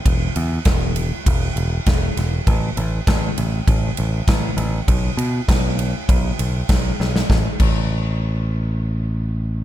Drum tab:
CC |----------------|----------------|----------------|--x-------------|
RD |x-x-x-x-x-x-x-x-|x-x-x-x-x-x-x-x-|x-x-x-x-x-x-x---|----------------|
SD |----o-------o-o-|----o-------o---|----o-------o-oo|o---------------|
BD |o---o---o---o---|o---o---o---o---|o---o---o---o---|o-o-------------|